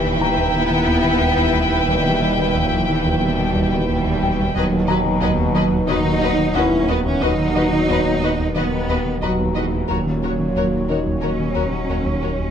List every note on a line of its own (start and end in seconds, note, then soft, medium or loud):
0.00 4.51 D#1 medium
0.00 4.39 D#2 medium
0.00 4.52 D#2 medium
0.00 0.51 G2 medium
0.00 0.51 E3 medium
0.00 4.55 E4 medium
0.00 4.51 B4 medium
0.00 4.55 B4 medium
0.00 4.52 E5 medium
0.00 4.51 G5 medium
0.00 4.55 G5 medium
0.00 0.52 C#6 medium
0.05 0.15 D#2 medium
0.05 0.16 E4 medium
0.21 0.31 D#3 medium
0.21 0.32 B3 medium
0.21 2.18 A#5 medium
0.38 0.48 D#2 medium
0.38 0.49 E3 medium
0.54 0.65 D#3 medium
0.54 1.86 B3 loud
0.54 0.66 B3 medium
0.54 1.88 E4 medium
0.71 0.81 D#3 medium
0.71 0.82 B3 medium
0.87 0.98 D#2 medium
0.87 0.99 E3 medium
1.04 1.15 D#3 medium
1.04 1.15 B3 medium
1.21 1.31 D#2 medium
1.21 1.32 G3 medium
1.38 1.48 D#2 medium
1.38 1.49 E3 medium
1.55 1.65 D#2 medium
1.55 1.66 G3 medium
1.71 1.81 D#2 medium
1.71 1.82 G3 medium
1.88 1.98 D#2 medium
1.88 2.54 B2 medium
1.88 1.99 E3 medium
1.88 2.54 G3 medium
2.04 2.15 D#3 medium
2.04 2.16 B3 medium
2.22 2.32 D#3 medium
2.22 2.32 B3 medium
2.38 2.48 D#3 medium
2.38 2.49 B3 medium
2.55 2.65 D#2 medium
2.55 2.89 A#2 medium
2.55 2.65 E3 medium
2.55 2.89 F#3 medium
2.72 2.82 D#2 medium
2.72 2.83 E4 medium
2.88 3.05 G2 medium
2.88 2.99 D#3 medium
2.88 3.05 E3 medium
2.88 2.99 B3 medium
3.05 3.15 D#2 medium
3.05 3.22 A#2 medium
3.05 3.15 E3 medium
3.05 3.22 F#3 medium
3.22 3.86 B2 medium
3.22 3.32 D#3 medium
3.22 3.88 G3 medium
3.22 3.32 B3 medium
3.39 3.49 D#3 medium
3.39 3.49 B3 medium
3.56 3.66 D#2 medium
3.56 3.65 E3 medium
3.72 3.82 D#3 medium
3.72 3.82 B3 medium
3.87 3.99 D#2 medium
3.87 4.52 B2 medium
3.87 3.99 G3 medium
3.87 4.54 G3 medium
4.05 4.15 D#2 medium
4.05 4.15 E3 medium
4.22 4.32 D#2 medium
4.22 4.32 G3 medium
4.22 6.19 G5 medium
4.39 4.49 D#2 medium
4.39 4.49 G3 medium
4.54 9.85 D#1 medium
4.54 4.66 D#2 medium
4.54 5.14 D#2 medium
4.54 5.15 D#2 medium
4.54 5.85 B2 medium
4.54 5.86 F#3 medium
4.54 4.63 F#3 medium
4.54 9.88 F#3 medium
4.54 4.65 B3 medium
4.54 9.85 B3 medium
4.54 9.89 D#4 medium
4.54 9.85 B4 medium
4.54 4.65 B4 medium
4.54 4.63 D#5 medium
4.72 4.82 D#3 medium
4.72 4.82 F#4 medium
4.88 4.99 D#3 medium
4.88 4.97 F#3 medium
4.88 4.98 B4 medium
4.88 4.96 D#5 medium
4.88 6.84 A#5 medium
5.05 5.15 D#3 medium
5.05 5.15 F#4 medium
5.22 5.32 D#2 medium
5.22 5.81 D#2 medium
5.22 5.30 F#3 medium
5.22 5.32 B3 medium
5.22 5.31 B4 medium
5.22 5.30 D#5 medium
5.38 5.48 D#2 medium
5.38 5.49 B4 medium
5.55 5.65 D#3 medium
5.55 5.63 F#3 medium
5.55 5.65 F#4 medium
5.55 5.64 B4 medium
5.55 5.64 D#5 medium
5.71 5.82 D#2 medium
5.71 5.82 B3 medium
5.88 6.48 D#2 medium
5.88 5.99 D#3 medium
5.88 5.96 F#3 medium
5.88 6.55 F#3 medium
5.88 6.54 D#4 loud
5.88 5.99 F#4 medium
5.88 5.98 B4 medium
5.88 5.96 D#5 medium
6.05 6.15 D#3 medium
6.05 6.15 F#4 medium
6.21 6.32 D#2 medium
6.21 6.32 B3 medium
6.21 6.30 F#4 medium
6.21 6.32 B4 medium
6.21 6.29 D#5 medium
6.38 6.48 D#3 medium
6.38 6.49 F#4 medium
6.54 6.65 D#2 medium
6.54 7.14 D#2 medium
6.54 6.89 C#4 medium
6.54 6.66 D#4 medium
6.54 6.88 E4 medium
6.54 6.63 F#4 medium
6.54 6.65 B4 medium
6.54 6.62 D#5 medium
6.54 8.51 F#5 medium
6.72 6.82 D#2 medium
6.72 6.82 B3 medium
6.87 6.99 D#2 medium
6.87 7.05 D#3 medium
6.87 7.05 B3 medium
6.87 6.99 D#4 medium
6.87 6.96 F#4 medium
6.87 6.98 B4 medium
6.87 6.97 D#5 medium
7.06 7.15 D#2 medium
7.06 7.23 E3 medium
7.06 7.22 C#4 medium
7.06 7.16 D#4 medium
7.22 7.81 D#2 medium
7.22 7.32 D#2 medium
7.22 7.81 D#2 medium
7.22 8.39 F#3 medium
7.22 7.32 B3 medium
7.22 8.55 D#4 loud
7.22 7.30 F#4 medium
7.22 7.31 B4 medium
7.22 7.30 D#5 medium
7.39 7.49 D#3 medium
7.39 7.49 F#4 medium
7.56 7.66 D#3 medium
7.56 7.64 F#4 medium
7.56 7.65 F#4 medium
7.56 7.65 B4 soft
7.56 7.64 D#5 medium
7.72 7.82 D#3 medium
7.72 7.82 F#4 medium
7.89 8.48 D#2 medium
7.89 7.99 D#2 medium
7.89 8.48 D#2 medium
7.89 7.99 B3 medium
7.89 7.97 F#4 medium
7.89 7.99 B4 medium
7.89 7.97 D#5 medium
8.05 8.16 D#2 medium
8.05 8.15 B4 medium
8.21 8.32 D#3 medium
8.21 8.31 F#4 medium
8.21 8.31 B4 medium
8.21 8.31 D#5 medium
8.39 8.49 D#2 medium
8.39 8.49 B3 medium
8.55 9.15 D#2 medium
8.55 8.65 D#3 medium
8.55 9.21 D#3 medium
8.55 9.21 B3 medium
8.55 8.65 F#4 medium
8.55 8.64 F#4 medium
8.55 8.64 B4 medium
8.55 8.64 D#5 medium
8.71 8.82 D#3 medium
8.71 8.81 F#4 medium
8.88 8.99 D#2 medium
8.88 8.98 B3 medium
8.88 8.99 F#4 medium
8.88 8.97 B4 medium
8.88 8.98 D#5 soft
9.05 9.16 D#3 medium
9.05 9.15 F#4 medium
9.22 9.32 D#2 medium
9.22 9.81 D#2 medium
9.22 9.55 B2 medium
9.22 9.55 F#3 medium
9.22 9.32 D#4 medium
9.22 11.18 F#4 soft
9.22 9.31 F#4 soft
9.22 9.31 B4 medium
9.22 9.31 D#5 medium
9.22 11.18 A#5 soft
9.38 9.49 D#2 medium
9.38 9.48 B3 medium
9.55 9.65 D#2 medium
9.55 9.89 G#2 medium
9.55 9.88 E3 medium
9.55 9.65 D#4 medium
9.55 9.65 F#4 soft
9.55 9.64 B4 soft
9.55 9.63 D#5 soft
9.72 9.82 D#2 medium
9.72 9.82 D#4 medium
9.88 12.51 D#1 medium
9.88 10.48 D#2 medium
9.88 9.99 D#2 medium
9.88 10.48 D#2 medium
9.88 11.22 A#2 medium
9.88 9.99 F#3 medium
9.88 11.22 F#3 medium
9.88 12.51 F#3 medium
9.88 12.51 A#3 medium
9.88 12.51 F#4 medium
9.88 9.98 F#4 medium
9.88 9.96 A#4 medium
9.88 12.51 C#5 medium
9.88 9.98 C#5 medium
10.06 10.16 D#3 medium
10.06 10.16 C#4 medium
10.23 10.33 D#3 medium
10.23 10.32 C#4 medium
10.23 10.31 F#4 soft
10.23 10.31 A#4 soft
10.23 10.32 C#5 soft
10.39 10.49 D#3 medium
10.39 10.49 C#4 medium
10.56 11.15 D#2 medium
10.56 10.66 D#2 medium
10.56 11.15 D#2 soft
10.56 10.66 F#3 medium
10.56 10.65 F#4 soft
10.56 10.64 A#4 soft
10.56 10.64 C#5 soft
10.73 10.83 D#2 soft
10.73 10.82 F#4 medium
10.88 11.00 D#3 medium
10.88 10.99 C#4 soft
10.88 12.51 D#4 soft
10.88 10.98 F#4 soft
10.88 10.96 A#4 soft
10.88 10.98 C#5 soft
10.88 12.51 D#5 soft
11.06 11.16 D#2 medium
11.06 11.16 F#3 medium
11.21 11.81 D#2 soft
11.21 11.33 D#3 medium
11.21 12.51 F#3 medium
11.21 12.51 C#4 medium
11.21 11.32 C#4 soft
11.21 11.31 F#4 soft
11.21 11.30 A#4 soft
11.21 11.29 C#5 soft
11.39 11.50 D#3 medium
11.39 11.49 C#4 soft
11.55 11.66 D#2 medium
11.55 11.66 F#3 medium
11.55 11.64 F#4 soft
11.55 11.63 A#4 soft
11.55 11.65 C#5 soft
11.73 11.82 D#3 medium
11.73 11.83 C#4 soft
11.89 11.99 D#2 medium
11.89 12.48 D#2 soft
11.89 11.99 A#3 soft
11.89 11.98 F#4 soft
11.89 11.97 A#4 soft
11.89 11.97 C#5 soft
12.06 12.16 D#2 medium
12.06 12.16 F#3 medium
12.22 12.33 D#2 soft
12.22 12.32 A#3 soft
12.22 12.31 F#4 soft
12.22 12.30 A#4 soft
12.22 12.30 C#5 soft
12.40 12.49 D#2 soft
12.40 12.49 A#3 soft